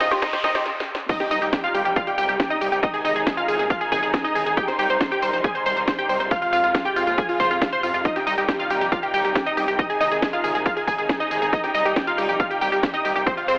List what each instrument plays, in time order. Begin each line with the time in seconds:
Already playing: string section C3 F3 G#3 F4, noise sweep, riser
0.00 analog synth bass F2, synth arpeggio sound C4, synth pluck D#4 D#5, snare, open hi-hat, tambourine
0.11 analog synth bass D#2, synth pluck G4, synth arpeggio sound C5, snare, closed hi-hat, tambourine
0.22 synth arpeggio sound C4, synth pluck D#4 D#5, kick, snare, closed hi-hat, tambourine
0.33 synth pluck G4, synth arpeggio sound C5, snare, open hi-hat, tambourine
0.44 analog synth bass F1, synth arpeggio sound C4, synth pluck D#4 D#5, snare, open hi-hat, tambourine
0.55 analog synth bass F2, synth pluck G4, synth arpeggio sound C5, snare, closed hi-hat, tambourine
0.66 snare
0.80 snare
0.95 snare
1.09 string section C3 D#3 G3 D#4, synth pluck D#4 D#5, supersaw synth D#6, kick, closed hi-hat, crash, tambourine, impact
1.20 synth pluck G4, supersaw synth G5, snare, closed hi-hat, tambourine
1.31 analog synth bass C2, synth pluck D#4 D#5, supersaw synth D#6, open hi-hat, tambourine
1.42 analog synth bass C2, synth pluck G4, supersaw synth G5, closed hi-hat, tambourine
1.53 synth pluck G4, supersaw synth G5, kick, snare, closed hi-hat, tambourine
1.64 synth pluck F4 F5, supersaw synth F6, closed hi-hat, tambourine
1.74 analog synth bass C2, synth pluck G4, supersaw synth G5, open hi-hat, tambourine
1.85 analog synth bass A#1, synth pluck G4, supersaw synth G5, closed hi-hat, tambourine
1.96 synth pluck F4 F5, supersaw synth F6, kick, closed hi-hat, tambourine
2.07 synth pluck G4, supersaw synth G5, closed hi-hat, tambourine
2.18 analog synth bass C2, synth pluck G4 G5, supersaw synth G6, open hi-hat, tambourine
2.29 analog synth bass C2, synth pluck G4, supersaw synth G5, closed hi-hat, tambourine
2.40 synth pluck G4, supersaw synth G5, kick, snare, closed hi-hat, tambourine
2.50 synth pluck D#4 D#5, supersaw synth D#6, closed hi-hat, tambourine
2.61 analog synth bass C2, synth pluck G4, supersaw synth G5, open hi-hat, tambourine
2.72 analog synth bass C2, synth pluck G4, supersaw synth G5, closed hi-hat, tambourine
2.83 string section G#3, synth pluck D#4 D#5, supersaw synth D#6, kick, closed hi-hat, tambourine
2.94 synth pluck G#4, supersaw synth G#5, closed hi-hat, tambourine
3.05 analog synth bass G#1, synth pluck D#4 D#5, supersaw synth D#6, open hi-hat, tambourine
3.16 analog synth bass G#1, synth pluck G#4, supersaw synth G#5, closed hi-hat, tambourine
3.27 synth pluck G#4, supersaw synth G#5, kick, snare, closed hi-hat, tambourine
3.37 synth pluck F4 F5, supersaw synth F6, closed hi-hat, tambourine
3.48 analog synth bass G#1, synth pluck G#4, supersaw synth G#5, open hi-hat, tambourine
3.59 analog synth bass D#1, synth pluck G#4, supersaw synth G#5, closed hi-hat, tambourine
3.70 synth pluck F4 F5, supersaw synth F6, kick, closed hi-hat, tambourine
3.81 synth pluck G#4, supersaw synth G#5, closed hi-hat, tambourine
3.92 analog synth bass G#1, synth pluck G#4 G#5, supersaw synth G#6, kick, open hi-hat, tambourine
4.02 analog synth bass G#1, synth pluck G#4, supersaw synth G#5, closed hi-hat, tambourine
4.13 synth pluck G#4, supersaw synth G#5, kick, snare, closed hi-hat, tambourine
4.24 synth pluck D#4 D#5, supersaw synth D#6, closed hi-hat, tambourine
4.35 analog synth bass G#1, synth pluck G#4, supersaw synth G#5, open hi-hat, tambourine
4.46 analog synth bass G#1, synth pluck G#4, supersaw synth G#5, closed hi-hat, tambourine
4.57 string section C3 G3, synth pluck G4 G5, supersaw synth G6, kick, closed hi-hat, tambourine
4.68 synth pluck C5, supersaw synth C6, snare, closed hi-hat, tambourine
4.79 analog synth bass C2, synth pluck G4 G5, supersaw synth G6, open hi-hat, tambourine
4.89 analog synth bass C2, synth pluck C5, supersaw synth C6, closed hi-hat, tambourine
5.01 synth pluck C5, supersaw synth C6, kick, snare, closed hi-hat, tambourine
5.11 synth pluck G4 G5, supersaw synth G6, closed hi-hat, tambourine
5.22 analog synth bass C2, synth pluck C5, supersaw synth C6, open hi-hat, tambourine
5.33 analog synth bass A#1, synth pluck C5, supersaw synth C6, closed hi-hat, tambourine
5.44 synth pluck G#4 G#5, supersaw synth G#6, kick, closed hi-hat, tambourine
5.55 synth pluck C5, supersaw synth C6, closed hi-hat, tambourine
5.66 analog synth bass C2, synth pluck C5 C6, supersaw synth C7, open hi-hat, tambourine
5.77 analog synth bass C2, synth pluck C5, supersaw synth C6, closed hi-hat, tambourine
5.88 synth pluck C5, supersaw synth C6, kick, snare, closed hi-hat, tambourine
5.98 synth pluck G4 G5, supersaw synth G6, closed hi-hat, tambourine
6.09 analog synth bass C2, synth pluck C5, supersaw synth C6, open hi-hat, tambourine
6.20 analog synth bass C2, synth pluck C5, supersaw synth C6, closed hi-hat, tambourine
6.31 string section F3 G#3 F4, synth pluck F4 F5, supersaw synth F6, kick, closed hi-hat, tambourine
6.42 synth pluck F4, supersaw synth F5, closed hi-hat, tambourine
6.53 analog synth bass F2, synth pluck F4 F5, supersaw synth F6, open hi-hat, tambourine
6.64 analog synth bass F2, synth pluck F4, supersaw synth F5, closed hi-hat, tambourine
6.74 synth pluck F4, supersaw synth F5, kick, snare, closed hi-hat, tambourine
6.85 synth pluck G4 G5, supersaw synth G6, closed hi-hat, tambourine
6.96 analog synth bass F2, synth pluck F4, supersaw synth F5, open hi-hat, tambourine
7.07 analog synth bass D#2, synth pluck F4, supersaw synth F5, closed hi-hat, tambourine
7.18 synth pluck G#4 G#5, supersaw synth G#6, kick, closed hi-hat, tambourine
7.29 synth pluck F4, supersaw synth F5, open hi-hat, tambourine
7.40 analog synth bass F1, synth pluck C5 C6, supersaw synth C7, kick, open hi-hat, tambourine
7.51 analog synth bass F2, synth pluck F4, supersaw synth F5, closed hi-hat, tambourine
7.62 synth pluck F4, supersaw synth F5, kick, snare, closed hi-hat, tambourine
7.72 synth pluck C5 C6, supersaw synth C7, closed hi-hat, tambourine
7.83 analog synth bass F2, synth pluck F4, supersaw synth F5, open hi-hat, tambourine
7.94 analog synth bass F2, synth pluck F4, supersaw synth F5, closed hi-hat, tambourine
8.05 string section D#3 G3 D#4, synth pluck D#4 D#5, supersaw synth D#6, kick, closed hi-hat, tambourine
8.16 synth pluck G4, supersaw synth G5, snare, closed hi-hat, tambourine
8.27 analog synth bass C2, synth pluck D#4 D#5, supersaw synth D#6, open hi-hat, tambourine
8.38 analog synth bass C2, synth pluck G4, supersaw synth G5, closed hi-hat, tambourine
8.48 synth pluck G4, supersaw synth G5, kick, snare, closed hi-hat, tambourine
8.59 synth pluck F4 F5, supersaw synth F6, closed hi-hat, tambourine
8.70 analog synth bass C2, synth pluck G4, supersaw synth G5, open hi-hat, tambourine
8.81 analog synth bass A#1, synth pluck G4, supersaw synth G5, closed hi-hat, tambourine
8.92 synth pluck F4 F5, supersaw synth F6, kick, closed hi-hat, tambourine
9.03 synth pluck G4, supersaw synth G5, closed hi-hat, tambourine
9.14 analog synth bass C2, synth pluck G4 G5, supersaw synth G6, open hi-hat, tambourine
9.24 analog synth bass C2, synth pluck G4, supersaw synth G5, closed hi-hat, tambourine
9.35 synth pluck G4, supersaw synth G5, kick, snare, closed hi-hat, tambourine
9.46 synth pluck D#4 D#5, supersaw synth D#6, closed hi-hat, tambourine
9.57 analog synth bass C2, synth pluck G4, supersaw synth G5, open hi-hat, tambourine
9.68 analog synth bass C2, synth pluck G4, supersaw synth G5, closed hi-hat, tambourine
9.79 string section G#3 D#4, synth pluck D#4 D#5, supersaw synth D#6, kick, closed hi-hat, tambourine
9.90 synth pluck G#4, supersaw synth G#5, closed hi-hat, tambourine
10.00 analog synth bass G#1, synth pluck D#4 D#5, supersaw synth D#6, open hi-hat, tambourine
10.11 analog synth bass G#1, synth pluck G#4, supersaw synth G#5, closed hi-hat, tambourine
10.22 synth pluck G#4, supersaw synth G#5, kick, snare, closed hi-hat, tambourine
10.33 synth pluck F4 F5, supersaw synth F6, closed hi-hat, tambourine
10.44 analog synth bass G#1, synth pluck G#4, supersaw synth G#5, open hi-hat, tambourine
10.55 analog synth bass D#1, synth pluck G#4, supersaw synth G#5, closed hi-hat, tambourine
10.66 synth pluck F4 F5, supersaw synth F6, kick, closed hi-hat, tambourine
10.77 synth pluck G#4, supersaw synth G#5, closed hi-hat, tambourine
10.87 analog synth bass G#1, synth pluck G#4 G#5, supersaw synth G#6, kick, open hi-hat, tambourine
10.98 analog synth bass G#1, synth pluck G#4, supersaw synth G#5, closed hi-hat, tambourine
11.09 synth pluck G#4, supersaw synth G#5, kick, snare, closed hi-hat, tambourine
11.20 synth pluck D#4 D#5, supersaw synth D#6, closed hi-hat, tambourine
11.31 analog synth bass G#1, synth pluck G#4, supersaw synth G#5, open hi-hat, tambourine
11.42 analog synth bass G#1, synth pluck G#4, supersaw synth G#5, closed hi-hat, tambourine
11.53 string section G3, synth pluck D#4 D#5, supersaw synth D#6, kick, closed hi-hat, tambourine
11.64 synth pluck G4, supersaw synth G5, snare, closed hi-hat, tambourine
11.75 analog synth bass C2, synth pluck D#4 D#5, supersaw synth D#6, open hi-hat, tambourine
11.85 analog synth bass C2, synth pluck G4, supersaw synth G5, closed hi-hat, tambourine
11.96 synth pluck G4, supersaw synth G5, kick, snare, closed hi-hat, tambourine
12.07 synth pluck F4 F5, supersaw synth F6, closed hi-hat, tambourine
12.18 analog synth bass C2, synth pluck G4, supersaw synth G5, open hi-hat, tambourine
12.29 analog synth bass A#1, synth pluck G4, supersaw synth G5, closed hi-hat, tambourine
12.40 synth pluck F4 F5, supersaw synth F6, kick, closed hi-hat, tambourine
12.51 synth pluck G4, supersaw synth G5, closed hi-hat, tambourine
12.61 analog synth bass C2, synth pluck G4 G5, supersaw synth G6, open hi-hat, tambourine
12.72 analog synth bass C2, synth pluck G4, supersaw synth G5, closed hi-hat, tambourine
12.83 synth pluck G4, supersaw synth G5, kick, snare, closed hi-hat, tambourine
12.94 synth pluck D#4 D#5, supersaw synth D#6, closed hi-hat, tambourine
13.05 analog synth bass C2, synth pluck G4, supersaw synth G5, open hi-hat, tambourine
13.16 analog synth bass C2, synth pluck G4, supersaw synth G5, closed hi-hat, tambourine
13.26 string section F3 G#3 F4, synth pluck C4 C5, supersaw synth C6, kick, closed hi-hat, tambourine
13.37 synth pluck F4, supersaw synth F5, closed hi-hat, tambourine
13.48 analog synth bass F2, synth pluck C4 C5, supersaw synth C6, open hi-hat, tambourine